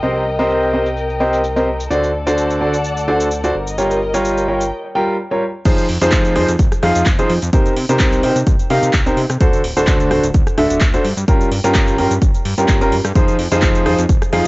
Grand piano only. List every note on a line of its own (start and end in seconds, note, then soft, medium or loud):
0.03 0.22 C4 medium
0.03 0.22 G4 medium
0.03 0.22 A#4 medium
0.03 0.22 C5 medium
0.03 0.22 D#5 medium
0.39 0.71 C4 medium
0.39 0.71 G4 medium
0.39 0.71 A#4 medium
0.39 0.71 C5 medium
0.39 0.71 D#5 loud
0.73 0.86 C4 medium
0.73 0.86 G4 medium
0.73 0.86 A#4 medium
0.73 0.86 C5 medium
0.73 0.86 D#5 medium
1.20 1.39 C4 medium
1.20 1.40 G4 medium
1.20 1.40 A#4 medium
1.20 1.39 C5 medium
1.20 1.40 D#5 loud
1.56 1.67 C4 medium
1.56 1.67 G4 medium
1.56 1.67 A#4 medium
1.56 1.67 C5 medium
1.56 1.67 D#5 medium
1.90 2.10 D3 medium
1.90 2.10 F#4 medium
1.90 2.10 A4 medium
1.90 2.10 C5 medium
1.90 2.10 D5 medium
2.27 2.58 D3 medium
2.27 2.58 F#4 medium
2.27 2.58 A4 medium
2.27 2.58 C5 medium
2.27 2.58 D5 loud
2.61 2.74 D3 medium
2.61 2.74 F#4 medium
2.61 2.74 A4 medium
2.61 2.74 C5 medium
2.61 2.74 D5 medium
3.08 3.27 D3 medium
3.08 3.27 F#4 medium
3.08 3.27 A4 medium
3.08 3.27 C5 medium
3.08 3.27 D5 medium
3.44 3.53 F#4 medium
3.44 3.53 A4 medium
3.44 3.53 C5 medium
3.44 3.53 D5 medium
3.78 3.97 G3 medium
3.78 3.97 F4 medium
3.78 3.97 G4 medium
3.78 3.97 A#4 medium
3.78 3.97 C#5 medium
4.14 4.46 G3 medium
4.14 4.46 F4 medium
4.14 4.46 G4 medium
4.14 4.46 A#4 medium
4.14 4.46 C#5 loud
4.48 4.61 G3 medium
4.48 4.61 F4 medium
4.48 4.61 G4 medium
4.48 4.61 A#4 medium
4.48 4.61 C#5 medium
4.95 5.14 G3 medium
4.95 5.14 F4 medium
4.95 5.14 G4 medium
4.95 5.14 A#4 medium
4.95 5.14 G5 medium
5.31 5.42 G3 medium
5.31 5.42 F4 medium
5.31 5.42 G4 medium
5.31 5.42 A#4 medium
5.31 5.42 C#5 medium
5.66 5.85 F3 medium
5.66 5.85 D#4 medium
5.66 5.85 F4 medium
5.66 5.85 G#4 medium
5.66 5.85 C5 medium
6.02 6.33 F3 loud
6.02 6.33 D#4 medium
6.02 6.33 F4 medium
6.02 6.33 G#4 medium
6.02 6.33 C5 loud
6.36 6.49 F3 medium
6.36 6.49 D#4 medium
6.36 6.49 F4 medium
6.36 6.49 G#4 medium
6.36 6.49 C5 medium
6.83 7.02 F3 medium
6.83 7.02 D#4 medium
6.83 7.02 F4 medium
6.83 7.02 G#4 medium
6.83 7.02 F5 loud
7.19 7.30 F3 medium
7.19 7.30 D#4 medium
7.19 7.30 F4 medium
7.19 7.30 G#4 medium
7.19 7.30 C5 medium
7.53 7.72 C3 medium
7.53 7.72 D#4 medium
7.53 7.72 G4 medium
7.53 7.72 A#4 medium
7.53 7.72 C5 medium
7.89 8.21 C3 loud
7.89 8.21 D#4 medium
7.89 8.21 G4 medium
7.89 8.21 A#4 medium
7.89 8.21 C5 loud
8.23 8.36 C3 medium
8.23 8.36 D#4 medium
8.23 8.36 G4 medium
8.23 8.36 A#4 medium
8.23 8.36 C5 medium
8.70 8.90 C3 medium
8.70 8.90 D#4 medium
8.70 8.90 G4 medium
8.70 8.90 A#4 medium
8.70 8.90 F5 loud
9.06 9.17 C3 medium
9.06 9.17 D#4 medium
9.06 9.17 G4 medium
9.06 9.17 A#4 medium
9.06 9.17 C5 medium
9.40 9.60 D3 medium
9.40 9.60 D4 medium
9.40 9.60 F#4 medium
9.40 9.60 A4 medium
9.40 9.60 C5 medium
9.77 10.08 D3 loud
9.77 10.08 D4 medium
9.77 10.08 F#4 medium
9.77 10.08 A4 medium
9.77 10.08 C5 loud
10.11 10.24 D3 medium
10.11 10.24 D4 medium
10.11 10.24 F#4 medium
10.11 10.24 A4 medium
10.11 10.24 C5 medium
10.58 10.77 D3 medium
10.58 10.77 D4 medium
10.58 10.77 F#4 medium
10.58 10.77 A4 medium
10.58 10.77 E5 loud
10.94 11.03 D4 medium
10.94 11.03 F#4 medium
10.94 11.03 A4 medium
10.94 11.03 C5 medium
11.28 11.47 G3 medium
11.28 11.47 C#4 medium
11.28 11.47 F4 medium
11.28 11.47 G4 medium
11.28 11.47 A#4 medium
11.64 11.96 G3 medium
11.64 11.96 C#4 medium
11.64 11.96 F4 medium
11.64 11.96 G4 medium
11.64 11.96 A#4 loud
11.98 12.11 G3 medium
11.98 12.11 C#4 medium
11.98 12.11 F4 medium
11.98 12.11 G4 medium
11.98 12.11 A#4 medium
12.58 12.78 G3 medium
12.58 12.78 C#4 medium
12.58 12.78 F4 medium
12.58 12.78 G4 medium
12.58 12.78 A#4 medium
12.81 12.92 G3 medium
12.81 12.92 C#4 medium
12.81 12.92 F4 medium
12.81 12.92 G4 medium
12.81 12.92 A#4 loud
13.15 13.35 F3 medium
13.15 13.35 D#4 medium
13.15 13.35 F4 medium
13.15 13.35 G#4 medium
13.15 13.35 C5 medium
13.52 13.83 F3 medium
13.52 13.83 D#4 medium
13.52 13.83 F4 medium
13.52 13.83 G#4 medium
13.52 13.83 C5 loud
13.86 13.99 F3 medium
13.86 13.99 D#4 medium
13.86 13.99 F4 medium
13.86 13.99 G#4 medium
13.86 13.99 C5 medium
14.33 14.47 F3 medium
14.33 14.47 D#4 medium
14.33 14.47 F4 medium
14.33 14.47 G#4 medium
14.33 14.47 F5 loud